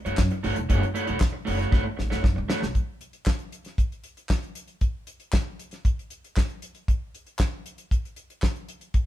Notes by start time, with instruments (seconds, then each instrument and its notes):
0.05 upright bass F#1, clean electric guitar A3 E4 F#4 C#5, closed hi-hat
0.17 upright bass F#2, muted clean electric guitar stroke, kick, snare, clap
0.31 muted clean electric guitar stroke, closed hi-hat
0.43 upright bass G#1, clean electric guitar A3 E4 F#4 C#5, open hi-hat
0.56 upright bass E1, muted clean electric guitar stroke, closed hi-hat
0.69 upright bass F#1, clean electric guitar A3 E4 F#4 C#5, kick, closed hi-hat
0.83 closed hi-hat
0.94 clean electric guitar A3 E4 F#4 C#5, closed hi-hat
1.06 upright bass E1, clean electric guitar A3 E4 F#4 C#5, closed hi-hat
1.20 muted clean electric guitar stroke, kick, snare, clap
1.32 muted clean electric guitar stroke
1.45 upright bass F#1, clean electric guitar A3 E4 F#4 C#5, open hi-hat
1.58 clean electric guitar A3 E4 F#4 C#5, snare, closed hi-hat
1.71 upright bass G#1, clean electric guitar A3 E4 F#4 C#5, kick, snare
1.84 muted clean electric guitar stroke
1.97 upright bass A1, muted clean electric guitar stroke, snare
2.10 upright bass F#1, clean electric guitar A3 E4 F#4 C#5, snare
2.23 upright bass F#2, muted clean electric guitar stroke, kick, snare
2.36 upright bass C#2, muted clean electric guitar stroke
2.48 clean electric guitar A3 E4 F#4 C#5, snare
2.61 upright bass B1, muted clean electric guitar stroke, snare
2.75 kick, closed hi-hat
3.01 closed hi-hat
3.13 closed hi-hat
3.26 kick, snare, clap
3.39 closed hi-hat
3.52 closed hi-hat
3.65 snare, closed hi-hat
3.78 kick, closed hi-hat
3.92 closed hi-hat
4.04 closed hi-hat
4.17 closed hi-hat
4.29 kick, snare, clap
4.42 closed hi-hat
4.55 closed hi-hat
4.68 closed hi-hat
4.81 kick, closed hi-hat
5.07 closed hi-hat
5.20 closed hi-hat
5.33 kick, snare, clap
5.59 closed hi-hat
5.71 snare, closed hi-hat
5.85 kick, closed hi-hat
5.99 closed hi-hat
6.10 closed hi-hat
6.24 closed hi-hat
6.37 kick, snare, clap
6.50 closed hi-hat
6.62 closed hi-hat
6.75 closed hi-hat
6.88 kick, closed hi-hat
7.15 closed hi-hat
7.27 closed hi-hat
7.39 kick, snare, clap
7.66 closed hi-hat
7.78 closed hi-hat
7.91 kick, closed hi-hat
8.05 closed hi-hat
8.16 closed hi-hat
8.30 closed hi-hat
8.42 kick, snare, clap
8.56 closed hi-hat
8.69 closed hi-hat
8.81 closed hi-hat
8.94 kick, closed hi-hat